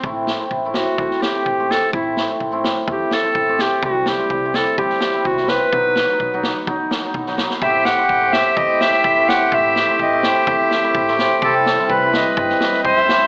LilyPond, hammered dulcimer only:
\new Staff \with { instrumentName = "Hammered dulcimer" } { \time 4/4 \tempo 4 = 126 <a c' e'>8 r16 <a c' e'>16 r16 <a c' e'>16 r8 <a c' e'>8 r16 <a c' g'>16 r16 <a c' g'>16 r8 | <a c' e'>8 r16 <a c' e'>16 r16 <a c' e'>16 r8 <a c' e'>8 r16 <a c' e'>16 r16 <a c' g'>16 r8 | <g c' e'>8 r16 <g c' e'>16 r16 <g c' e'>16 r8 <g c' e'>8 r16 <g c' e'>16 r16 <g c' e'>16 r8 | <fis b dis'>8 r16 <fis b dis'>16 r16 <fis b dis'>16 r8 <fis b dis'>8 r16 <fis b dis'>16 r16 <fis b dis'>16 r8 |
<a c' e'>8 r16 <a c' e'>16 r16 <a c' g'>16 r8 <a c' e'>8 r16 <a c' e'>16 r16 <a c' e'>16 r8 | <a c' e'>8 r16 <a c' e'>16 r16 <a c' e'>16 r8 <a c' e'>8 r16 <a c' e'>16 r16 <a c' e'>16 r8 | <g c' e'>8 r16 <g c' e'>16 r16 <g c' e'>16 r8 <g c' e'>8 r16 <g c' e'>16 r16 <g c' e'>16 r8 | }